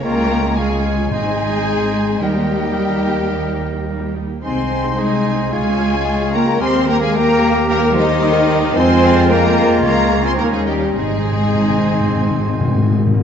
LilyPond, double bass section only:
\new Staff \with { instrumentName = "Double bass section" } { \clef bass \time 4/4 \key aes \major \tempo 4 = 110 des,2 aes,,2 | ees,2.~ ees,8 r8 | c,2 des,2 | ees,1 |
f,2 des,4 ees,4 | aes,,2.~ aes,,8 r8 | }